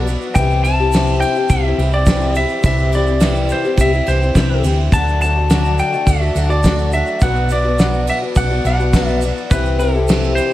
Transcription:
Already playing: B1 B3 F#4 D5
0.07 F#3 B3 D4, ride, shaker
0.11 F#4
0.22 shaker
0.35 C2 C3 E3 C4 E4 G4 G5, kick, ride, shaker
0.39 G4
0.51 shaker
0.64 E3 C4 A5, ride, shaker
0.68 E4 G4
0.80 C4 E4 G4
0.92 C3 E3 C4 E4 G4, snare, ride, shaker
1.07 shaker
1.20 G5, ride, shaker
1.36 C4 E4 G4, shaker
1.49 C2 E5, kick, ride, shaker
1.65 C4 E4 G4
1.78 C2 E3 C4 E4, ride
1.82 G4
1.92 E4 G4 D5, shaker
1.97 C4
2.06 C3 E3 C4 E4 G4, kick, snare, ride, shaker
2.21 shaker
2.35 E3 C4 E4 E5, ride, shaker
2.39 G4
2.49 shaker
2.63 C2 C3 E3 C4 E4 G4 E5, kick, ride, shaker
2.78 shaker
2.92 E3 C4 E4 G4 D5, ride, shaker
3.07 C4 E4 G4, shaker
3.20 C3 E3 C4 E4 G4, snare, ride, shaker
3.35 shaker
3.49 C5, ride, shaker
3.64 C4 E4 G4, shaker
3.77 C2 E5, kick, ride, shaker
3.93 C4 E4 G4, shaker
4.06 C2 E3 C4 E4 G4 C5, ride, shaker
4.21 C4 E4 G4, shaker
4.35 C2 C3 E3 C4 E4 G4, kick, snare, ride, shaker
4.64 D2 E3 C4 E4 G4, ride, shaker
4.92 D2 D3 F#3 A3 D4 F#4 A4 A5, kick, crash, shaker
5.08 shaker
5.21 F#3 A3 D4 A5, ride, shaker
5.25 F#4
5.36 A3 D4 F#4
5.49 D3 F#3 A3 D4 F#4, snare, ride, shaker
5.65 shaker
5.78 G5, ride, shaker
5.93 A3 D4 F#4, shaker
6.06 D2 E5, kick, ride, shaker
6.21 A3 D4 F#4
6.35 D2 F#3 A3 D4 F#4, ride, shaker
6.49 A3 D4 F#4 D5, shaker
6.64 D3 F#3 A3 D4 F#4, kick, snare, ride, shaker
6.78 shaker
6.92 F#3 A3 D4 F#4 E5, ride, shaker
7.07 shaker
7.21 B1 B2 F#3 B3 D4 F#4 D5 F#5, kick, ride, shaker
7.35 shaker
7.49 F#3 B3 D4 F#4 D5, ride, shaker
7.64 B3 D4 F#4
7.78 B2 F#3 B3 D4 F#4, snare, ride, shaker
7.93 shaker
8.07 E5, ride, shaker
8.22 B3 D4 F#4
8.36 B1 F#5, kick, ride, shaker
8.51 B3 D4 F#4
8.64 B1 F#3 B3 D4 F#4 F#5, ride, shaker
8.79 B3 D4 F#4, shaker
8.93 B2 F#3 B3 D4 F#4, kick, snare, ride, shaker
9.07 E5, shaker
9.22 F#3 B3 D4 F#4, ride, shaker
9.37 shaker
9.51 C2 C3 E3 C4 E4 G4 B4, kick, ride, shaker
9.65 shaker
9.79 E3 C4 E4 G4 A4, ride, shaker
9.94 C4 E4 G4
10.08 C3 E3 C4 E4 G4, snare, ride, shaker
10.23 shaker
10.35 C5, ride, shaker

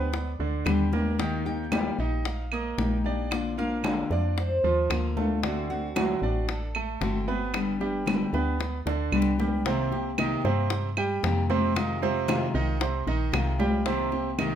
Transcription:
Already playing: D2 B3 D4 G4 B4
0.13 D5, muted nylon-string guitar stroke, high bongo, high conga
0.39 D2 D3 D4, high conga
0.65 D#2 D3 G3 B3 D4 G4, high bongo, low bongo, high conga, claves
0.92 A#3 B3 D4 G4 A#4, high bongo, high conga
1.19 D#3 A#3 D#4 G4 G5, high bongo, high conga
1.45 A#3 D#4 G4 G5, high conga
1.72 D#3 G3 A#3 D#4 G4, high bongo, high conga, claves
1.99 A#1 A#3 D#4 G4 D#5
2.25 F5, muted nylon-string guitar stroke, high bongo, high conga
2.52 A#3 A#4 D#5, high conga, claves
2.78 A#1 D#3 A#3 D#4 G4, high bongo, low bongo, high conga
3.04 A#3 D4 D#4 G4 D5, high conga
3.30 D3 A#3 D4 F4 D5, high bongo, high conga, claves
3.57 A#3 D4 F4 A#4 F5, high bongo, high conga
3.83 D3 A#3 D4 F4, high bongo, high conga, claves
4.10 F2 A#3 D4 F4 D5, high bongo, high conga
4.37 C5, muted nylon-string guitar stroke, high bongo, high conga
4.64 D#2 F3 F4, high conga
4.90 D2 D3 A#3 D4 F4 A#4, high bongo, low bongo, high conga, claves
5.17 A3 A#3 D4 F4 A4, high bongo, high conga
5.43 D3 A3 C4 D4 F#4, high bongo, high conga
5.70 A3 C4 F#4, high conga
5.95 D3 F#3 A3 C4 F#4, high bongo, high conga, claves
6.22 A1 A3 C4 D4 F#4 D5
6.49 A4, muted nylon-string guitar stroke, high bongo, high conga
6.75 A3 A4, high conga, claves
7.01 G1 D3 A3 C4 F#4 A4, high bongo, low bongo, high conga
7.28 A3 B3 C4 F#4 B4, high conga
7.54 D3 G3 B3 D4 G4, high bongo, high conga, claves
7.80 G3 B3 D4 G4, high bongo, high conga
8.06 D3 G3 B3 D4 G4, high bongo, high conga, claves
8.33 D2 B3 D4 G4 B4, high bongo, high conga
8.59 muted nylon-string guitar stroke, high bongo, high conga
8.86 D2 D3 D4, high bongo, high conga
9.12 C2 D3 G3 B3 D4 G4, high conga, claves
9.22 low bongo
9.38 G3 B3 D4 G4, low bongo, high conga
9.65 C3 D#3 A#3 C4 G4 C5, high bongo, high conga
9.92 A#3 C4 G4, high bongo, high conga
10.18 C3 D#3 A#3 C4 D#4 G4 D#5, high bongo, high conga, claves
10.44 G2 C3 A#3 C4 G4 C5, high bongo, high conga
10.70 muted nylon-string guitar stroke, high bongo, high conga
10.97 G3 G4 G5, high bongo, high conga, claves
11.23 F2 C3 D#3 A#3 C4 G4, high bongo, low bongo, high conga
11.49 C3 A#3 C4 G4 C5, high conga
11.75 C3 D#3 G#3 C4 D#4 F4 D#5, high bongo, claves
12.02 C3 G#3 C4 F4 C5, high bongo, high conga
12.28 C3 D#3 G#3 C4 F4, high bongo, high conga, claves
12.54 C2 D#3 G#3 C4 D#4 F4 D#5, high conga
12.80 C3 C4 C5, muted nylon-string guitar stroke, high bongo, high conga
13.07 A#1 D#3 D#4 D#5, high bongo, high conga
13.32 C2 C3 D#3 G#3 C4 F4, high bongo, low bongo, high conga, claves
13.59 G3 G#3 C4 F4 G4 G5, high bongo, high conga
13.86 C3 D#3 A#3 C4 G4 C5, high bongo, high conga
14.12 A#3 C4 G4, high bongo, high conga
14.38 C3 D#3 A#3 C4 D#4 G4 D#5, high bongo, high conga, claves

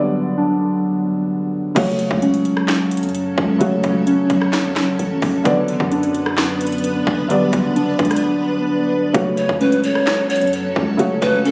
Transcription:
Already playing: D3 F#3 G3 B3 D4 B4 D5
0.38 D4
1.75 F#1 C#3 F#3 A3 C#4 F#4 A4 C#5, kick, closed hi-hat, crash
1.99 closed hi-hat
2.11 C#2, kick
2.22 C#4, closed hi-hat
2.34 closed hi-hat
2.45 closed hi-hat
2.57 cross-stick
2.68 snare, clap, closed hi-hat
2.91 closed hi-hat
2.97 closed hi-hat
3.03 F#2, closed hi-hat
3.09 closed hi-hat
3.15 closed hi-hat
3.38 C#2, kick
3.59 C#3 F#3 A3 F#4 C#5, closed hi-hat
3.84 C#2, kick, closed hi-hat
4.07 C#4, closed hi-hat
4.30 F#1, kick, closed hi-hat
4.42 cross-stick
4.53 snare, clap, closed hi-hat
4.65 F#2
4.76 snare, clap, closed hi-hat
4.99 A1, closed hi-hat
5.22 F#1, kick, open hi-hat
5.44 F#1 D3 F#3 B3 D4 B4 D5, kick, closed hi-hat
5.68 A1, closed hi-hat
5.80 F#2, kick
5.92 D4, closed hi-hat
6.03 closed hi-hat
6.14 closed hi-hat
6.26 cross-stick
6.37 snare, clap, closed hi-hat
6.61 closed hi-hat
6.67 closed hi-hat
6.72 closed hi-hat
6.78 closed hi-hat
6.84 closed hi-hat
7.07 F#1, kick
7.28 D3 F#3 G3 B3 D5, closed hi-hat
7.53 F#1, kick, closed hi-hat
7.76 D4, closed hi-hat
7.99 C#2, kick, closed hi-hat
8.05 closed hi-hat
8.11 cross-stick, closed hi-hat
8.16 closed hi-hat
9.13 F#1 C#3 F#3 A3 C#4 F#4 A4 C#5, kick, closed hi-hat
9.37 C#5, closed hi-hat
9.49 C#2, kick
9.61 C#4 B4, closed hi-hat
9.72 closed hi-hat
9.84 C#5, closed hi-hat
9.95 cross-stick
10.07 snare, clap, closed hi-hat
10.30 C#5, closed hi-hat
10.36 closed hi-hat
10.41 F#2, closed hi-hat
10.47 closed hi-hat
10.53 closed hi-hat
10.76 C#2, kick
10.97 C#3 F#3 A3 F#4 C#5, closed hi-hat
11.22 C#2 B4, kick, closed hi-hat
11.45 C#4 A4, closed hi-hat

